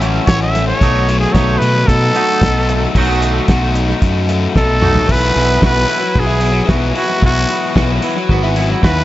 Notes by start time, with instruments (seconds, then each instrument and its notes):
Already playing: fingered electric bass A1, overdriven electric guitar E3 A3 C#4
0.00 clean electric guitar E3 A3 C#4, overdriven electric guitar F#4, closed hi-hat
0.27 fingered electric bass A1, clean electric guitar E3 A3, overdriven electric guitar C#4, trumpet C#5, kick, snare, closed hi-hat
0.42 trumpet E5
0.54 clean electric guitar E3 A3, overdriven electric guitar A3, snare, closed hi-hat
0.67 trumpet C#5
0.81 fingered electric bass B1, overdriven electric guitar F#3, clean electric guitar F#3 A3 D#4, kick, closed hi-hat
1.08 clean electric guitar F#3 A3, overdriven electric guitar F#3, closed hi-hat
1.19 trumpet G#4
1.33 fingered electric bass B1, clean electric guitar F#3 A3 D#4, overdriven electric guitar A3, trumpet C#5, kick, snare, closed hi-hat
1.58 fingered electric bass B2, clean electric guitar F#3 A3, overdriven electric guitar F#3, trumpet B4, closed hi-hat
1.87 fingered electric bass B2, clean electric guitar F#3 A3, overdriven electric guitar D#4, trumpet A4, kick, closed hi-hat
2.14 clean electric guitar F#3 A3 D#4, overdriven electric guitar F#4, closed hi-hat
2.42 fingered electric bass B1, clean electric guitar F#3 A3, overdriven electric guitar D#4, kick, snare, closed hi-hat
2.68 clean electric guitar F#3 A3, overdriven electric guitar A3, closed hi-hat
2.95 fingered electric bass B1, clean electric guitar F#3 A3 D#4 F#4, overdriven electric guitar F#3, kick, crash
3.21 overdriven electric guitar A3, closed hi-hat
3.48 fingered electric bass B1, overdriven electric guitar F#4, kick, snare, closed hi-hat
3.75 overdriven electric guitar D#4, closed hi-hat
4.02 fingered electric bass F#2, overdriven electric guitar F#3, kick, closed hi-hat
4.29 overdriven electric guitar A3, closed hi-hat
4.55 fingered electric bass B1, overdriven electric guitar D#4, trumpet A4, kick, snare
4.81 clean electric guitar F#3 A3 D#4 F#4, overdriven electric guitar A3, mid tom
4.95 floor tom
5.06 fingered electric bass B1, clean electric guitar E3, overdriven electric guitar F#3 B3 E4, kick, crash
5.12 trumpet B4
5.36 fingered electric bass B1, clean electric guitar B3, open hi-hat
5.60 fingered electric bass B1, overdriven electric guitar F#3 B3 E4, clean electric guitar F#4, kick, snare
5.66 trumpet B4
5.73 overdriven electric guitar B3 E4
5.86 overdriven electric guitar F#3 B3 E4, open hi-hat
5.90 clean electric guitar E4
6.00 muted overdriven electric guitar stroke
6.16 fingered electric bass B1, clean electric guitar B3, trumpet G#4, kick
6.27 overdriven electric guitar B3 E4
6.39 overdriven electric guitar F#3 B3 E4, open hi-hat
6.43 clean electric guitar E4
6.52 muted overdriven electric guitar stroke
6.64 overdriven electric guitar F#3 B3 E4
6.69 fingered electric bass B1, clean electric guitar F#4, kick, snare
6.93 overdriven electric guitar F#3 B3 E4, open hi-hat
6.97 clean electric guitar E4, trumpet F#4
7.05 overdriven electric guitar B3 E4
7.19 fingered electric bass B1, overdriven electric guitar F#3 B3, kick
7.23 clean electric guitar E3, overdriven electric guitar E4, trumpet F#4
7.49 clean electric guitar B3, open hi-hat
7.75 fingered electric bass B1, overdriven electric guitar F#3 B3 E4, clean electric guitar F#4, kick, snare
7.89 overdriven electric guitar B3 E4
8.02 overdriven electric guitar F#3 B3 E4, clean electric guitar E4, open hi-hat
8.17 muted overdriven electric guitar stroke
8.29 fingered electric bass G#1, clean electric guitar B3, kick
8.43 overdriven electric guitar B3 E4
8.56 overdriven electric guitar F#3 B3 E4, clean electric guitar E4, open hi-hat
8.71 muted overdriven electric guitar stroke
8.83 fingered electric bass D#2, overdriven electric guitar F#3 B3 E4, clean electric guitar F#4, trumpet B4, kick, snare